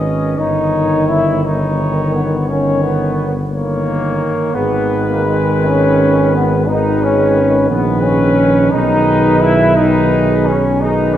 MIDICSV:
0, 0, Header, 1, 6, 480
1, 0, Start_track
1, 0, Key_signature, 5, "minor"
1, 0, Tempo, 707547
1, 257, Time_signature, 12, 3, 24, 8
1, 1215, Tempo, 688073
1, 3135, Tempo, 729927
1, 4095, Tempo, 687285
1, 7706, End_track
2, 0, Start_track
2, 0, Title_t, "Cornet"
2, 0, Program_c, 0, 56
2, 0, Note_on_c, 0, 75, 51
2, 259, Note_on_c, 0, 73, 59
2, 269, Note_off_c, 0, 75, 0
2, 966, Note_off_c, 0, 73, 0
2, 970, Note_on_c, 0, 73, 60
2, 1680, Note_off_c, 0, 73, 0
2, 1695, Note_on_c, 0, 73, 53
2, 2218, Note_off_c, 0, 73, 0
2, 2412, Note_on_c, 0, 73, 61
2, 3137, Note_on_c, 0, 71, 64
2, 3147, Note_off_c, 0, 73, 0
2, 4565, Note_off_c, 0, 71, 0
2, 4569, Note_on_c, 0, 71, 57
2, 5271, Note_off_c, 0, 71, 0
2, 5283, Note_on_c, 0, 71, 74
2, 5988, Note_off_c, 0, 71, 0
2, 5996, Note_on_c, 0, 71, 74
2, 6711, Note_off_c, 0, 71, 0
2, 6719, Note_on_c, 0, 71, 72
2, 7254, Note_off_c, 0, 71, 0
2, 7457, Note_on_c, 0, 71, 75
2, 7706, Note_off_c, 0, 71, 0
2, 7706, End_track
3, 0, Start_track
3, 0, Title_t, "French horn section"
3, 0, Program_c, 1, 60
3, 0, Note_on_c, 1, 71, 49
3, 246, Note_off_c, 1, 71, 0
3, 265, Note_on_c, 1, 70, 55
3, 970, Note_off_c, 1, 70, 0
3, 978, Note_on_c, 1, 70, 60
3, 1685, Note_off_c, 1, 70, 0
3, 1696, Note_on_c, 1, 70, 60
3, 2305, Note_off_c, 1, 70, 0
3, 2424, Note_on_c, 1, 70, 57
3, 3122, Note_off_c, 1, 70, 0
3, 3140, Note_on_c, 1, 68, 62
3, 4557, Note_off_c, 1, 68, 0
3, 4566, Note_on_c, 1, 68, 62
3, 5269, Note_off_c, 1, 68, 0
3, 5282, Note_on_c, 1, 68, 61
3, 5987, Note_off_c, 1, 68, 0
3, 6002, Note_on_c, 1, 68, 67
3, 6715, Note_off_c, 1, 68, 0
3, 6730, Note_on_c, 1, 68, 72
3, 7337, Note_off_c, 1, 68, 0
3, 7455, Note_on_c, 1, 68, 73
3, 7706, Note_off_c, 1, 68, 0
3, 7706, End_track
4, 0, Start_track
4, 0, Title_t, "Trombone section"
4, 0, Program_c, 2, 61
4, 0, Note_on_c, 2, 61, 77
4, 258, Note_off_c, 2, 61, 0
4, 263, Note_on_c, 2, 63, 88
4, 735, Note_on_c, 2, 64, 87
4, 742, Note_off_c, 2, 63, 0
4, 971, Note_off_c, 2, 64, 0
4, 978, Note_on_c, 2, 63, 76
4, 1459, Note_off_c, 2, 63, 0
4, 1459, Note_on_c, 2, 59, 72
4, 1699, Note_off_c, 2, 59, 0
4, 1702, Note_on_c, 2, 61, 67
4, 1936, Note_on_c, 2, 59, 75
4, 1940, Note_off_c, 2, 61, 0
4, 2302, Note_off_c, 2, 59, 0
4, 2420, Note_on_c, 2, 58, 81
4, 3121, Note_off_c, 2, 58, 0
4, 3130, Note_on_c, 2, 59, 94
4, 3492, Note_on_c, 2, 58, 73
4, 3494, Note_off_c, 2, 59, 0
4, 3610, Note_on_c, 2, 56, 81
4, 3616, Note_off_c, 2, 58, 0
4, 3857, Note_off_c, 2, 56, 0
4, 3863, Note_on_c, 2, 61, 98
4, 4330, Note_on_c, 2, 59, 78
4, 4335, Note_off_c, 2, 61, 0
4, 4563, Note_on_c, 2, 63, 93
4, 4572, Note_off_c, 2, 59, 0
4, 4804, Note_on_c, 2, 61, 91
4, 4806, Note_off_c, 2, 63, 0
4, 5277, Note_on_c, 2, 59, 87
4, 5284, Note_off_c, 2, 61, 0
4, 5513, Note_on_c, 2, 61, 92
4, 5515, Note_off_c, 2, 59, 0
4, 5991, Note_on_c, 2, 63, 106
4, 5998, Note_off_c, 2, 61, 0
4, 6478, Note_on_c, 2, 64, 105
4, 6480, Note_off_c, 2, 63, 0
4, 6721, Note_on_c, 2, 63, 103
4, 6726, Note_off_c, 2, 64, 0
4, 7211, Note_on_c, 2, 61, 95
4, 7213, Note_off_c, 2, 63, 0
4, 7452, Note_on_c, 2, 63, 107
4, 7455, Note_off_c, 2, 61, 0
4, 7692, Note_off_c, 2, 63, 0
4, 7706, End_track
5, 0, Start_track
5, 0, Title_t, "Trombone"
5, 0, Program_c, 3, 57
5, 0, Note_on_c, 3, 51, 48
5, 240, Note_off_c, 3, 51, 0
5, 254, Note_on_c, 3, 51, 61
5, 961, Note_off_c, 3, 51, 0
5, 986, Note_on_c, 3, 51, 57
5, 1689, Note_off_c, 3, 51, 0
5, 1702, Note_on_c, 3, 51, 56
5, 2221, Note_off_c, 3, 51, 0
5, 2417, Note_on_c, 3, 51, 55
5, 3105, Note_off_c, 3, 51, 0
5, 3124, Note_on_c, 3, 51, 70
5, 4541, Note_off_c, 3, 51, 0
5, 4566, Note_on_c, 3, 51, 64
5, 5270, Note_off_c, 3, 51, 0
5, 5288, Note_on_c, 3, 51, 63
5, 5990, Note_off_c, 3, 51, 0
5, 6002, Note_on_c, 3, 51, 77
5, 6715, Note_off_c, 3, 51, 0
5, 6730, Note_on_c, 3, 51, 74
5, 7260, Note_off_c, 3, 51, 0
5, 7463, Note_on_c, 3, 51, 75
5, 7706, Note_off_c, 3, 51, 0
5, 7706, End_track
6, 0, Start_track
6, 0, Title_t, "Tuba"
6, 0, Program_c, 4, 58
6, 0, Note_on_c, 4, 32, 57
6, 229, Note_off_c, 4, 32, 0
6, 261, Note_on_c, 4, 31, 58
6, 2919, Note_off_c, 4, 31, 0
6, 3130, Note_on_c, 4, 32, 64
6, 5279, Note_on_c, 4, 34, 62
6, 5290, Note_off_c, 4, 32, 0
6, 5996, Note_off_c, 4, 34, 0
6, 6000, Note_on_c, 4, 35, 71
6, 7706, Note_off_c, 4, 35, 0
6, 7706, End_track
0, 0, End_of_file